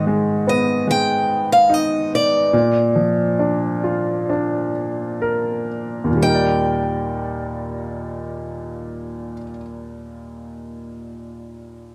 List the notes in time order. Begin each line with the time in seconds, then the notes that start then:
Already playing: G#2 D#3
0.07 G#3
0.47 B3 D#5
0.87 G#3 G5
1.52 F5
1.69 D#4
1.74 D#5
2.15 D5
2.53 A#2
2.96 F3
3.39 D4
3.84 F4
4.29 D4
5.22 A#4
6.04 D#2
6.11 A#2
6.17 G3
6.22 D#4 G5
6.29 A#4
6.35 D5